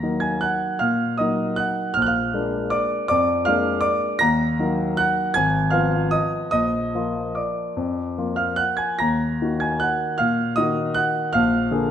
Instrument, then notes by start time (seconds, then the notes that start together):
grand piano
Already playing: D#2 A#5 A#6
0.03 F#3 A#3 D#4
0.20 G#5 G#6
0.41 F#5 F#6
0.79 A#2 F5 F6
1.18 F#3 A#3 D#4 D#5 D#6
1.56 F#5 F#6
1.94 A#1 F6
2.02 F#6
2.06 F5 F6
2.34 G#3 A#3 D4
2.70 D5 D6
3.08 F2 D5 D6
3.45 G#3 A#3 D4 F5 F6
3.81 D5 D6
4.19 D#2 A#5 A#6
4.59 F#3 A#3 D#4
4.97 F#5 F#6
5.34 G#1 G#5 G#6
5.70 F3 B3 F4 F5 F6
6.11 D#5 D#6
6.51 A#1 D#5 D#6
6.95 F3 A#3 F4
7.35 D5 D6
7.77 F2
8.18 F3 A#3 F4
8.36 F5 F6
8.56 F#5 F#6
8.77 G#5 G#6
8.99 D#2 A#5 A#6
9.42 D#3 A#3 F#4
9.60 G#5 G#6
9.80 F#5 F#6
10.18 A#2 F5 F6
10.56 D#3 A#3 F#4 D#5 D#6
10.94 F#5 F#6
11.33 A#1 F5 F6
11.71 D3 A#3 G#4